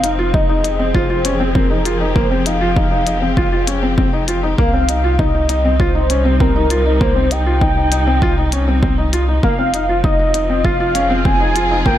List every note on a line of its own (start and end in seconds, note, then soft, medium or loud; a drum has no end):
0.00 4.55 F1 medium
0.00 4.58 F3 medium
0.00 9.43 C4 medium
0.00 1.18 D#4 medium
0.00 0.12 D#4 medium
0.00 0.36 F5 loud
0.00 closed hi-hat medium
0.19 0.28 F4 medium
0.32 0.43 D#4 medium
0.32 4.58 G#4 medium
0.32 0.97 D#5 loud
0.32 kick loud
0.42 6.52 G4 medium
0.49 0.58 D#4 medium
0.64 0.73 D#4 medium
0.64 closed hi-hat medium
0.79 0.88 C4 medium
0.94 1.03 F4 loud
0.94 1.57 C5 loud
0.94 kick loud
1.09 1.18 F4 medium
1.25 1.34 C#4 medium
1.25 closed hi-hat medium
1.40 1.49 C4 medium
1.55 1.64 C4 medium
1.55 2.18 A#4 loud
1.55 kick loud
1.70 1.79 D#4 medium
1.85 1.94 F4 medium
1.85 closed hi-hat medium
2.00 2.09 D#4 medium
2.15 2.24 A#3 loud
2.15 2.47 C5 loud
2.15 kick loud
2.31 2.40 C4 medium
2.46 2.55 D#4 medium
2.46 4.28 F5 loud
2.46 closed hi-hat medium
2.61 2.70 F4 medium
2.76 2.85 D#4 medium
2.76 kick loud
2.91 3.00 D#4 medium
3.07 3.16 D#4 medium
3.07 closed hi-hat medium
3.22 3.31 C4 medium
3.37 3.46 F4 medium
3.37 kick loud
3.52 3.61 F4 medium
3.67 3.76 C#4 medium
3.67 closed hi-hat medium
3.83 3.91 C4 medium
3.98 4.07 C4 medium
3.98 kick loud
4.13 4.22 D#4 medium
4.28 4.37 F4 medium
4.28 closed hi-hat medium
4.43 4.52 D#4 medium
4.58 9.40 C2 medium
4.58 9.43 C3 medium
4.58 4.67 A#3 loud
4.58 5.20 F5 loud
4.58 kick loud
4.66 9.43 G3 medium
4.74 4.82 C4 medium
4.74 11.34 D#4 medium
4.89 4.98 D#4 medium
4.89 closed hi-hat medium
5.04 5.13 F4 medium
5.19 5.28 D#4 medium
5.19 5.81 D#5 loud
5.19 kick loud
5.34 5.43 D#4 medium
5.49 5.58 D#4 medium
5.49 closed hi-hat medium
5.65 5.73 C4 medium
5.80 5.89 F4 medium
5.80 6.40 C5 loud
5.80 kick loud
5.95 6.04 D#4 medium
6.10 6.19 C#4 medium
6.10 closed hi-hat medium
6.25 6.34 C4 medium
6.40 6.49 C4 medium
6.40 7.03 A#4 loud
6.40 kick loud
6.56 6.64 D#4 medium
6.70 6.79 F4 medium
6.70 closed hi-hat medium
6.86 6.94 D#4 medium
7.01 7.09 A#3 loud
7.01 7.33 C5 loud
7.01 kick loud
7.16 7.25 C4 medium
7.31 7.40 D#4 medium
7.31 9.13 G5 loud
7.31 closed hi-hat medium
7.46 7.55 F4 medium
7.61 7.70 D#4 medium
7.61 kick loud
7.77 7.86 D#4 medium
7.92 8.01 D#4 medium
7.92 closed hi-hat medium
8.07 8.16 C4 medium
8.22 8.31 F4 loud
8.22 kick loud
8.38 8.46 D#4 medium
8.52 8.61 C#4 medium
8.52 closed hi-hat medium
8.68 8.77 C4 medium
8.83 8.92 C4 medium
8.83 kick loud
8.98 9.07 D#4 medium
9.13 9.22 F4 medium
9.13 closed hi-hat medium
9.28 9.37 D#4 medium
9.43 11.98 F1 medium
9.43 11.98 F3 medium
9.43 9.52 A#3 loud
9.43 10.06 F5 loud
9.43 kick loud
9.59 9.67 C4 medium
9.74 9.83 D#4 medium
9.74 closed hi-hat medium
9.81 11.98 C4 medium
9.89 9.98 F4 medium
10.04 10.13 D#4 medium
10.04 10.66 D#5 loud
10.04 kick loud
10.19 10.28 D#4 medium
10.34 10.43 D#4 medium
10.34 closed hi-hat medium
10.44 11.98 F4 medium
10.50 10.58 C4 medium
10.64 10.73 F4 medium
10.64 11.27 F5 loud
10.64 kick loud
10.80 10.89 F4 medium
10.80 11.98 G#4 medium
10.95 11.04 C#4 medium
10.95 closed hi-hat medium
11.10 11.19 C4 medium
11.25 11.34 C4 medium
11.25 11.85 G#5 loud
11.25 kick loud
11.40 11.49 D#4 medium
11.56 11.64 F4 medium
11.56 closed hi-hat medium
11.70 11.79 D#4 medium
11.86 11.95 A#3 loud
11.86 11.98 G5 loud
11.86 kick loud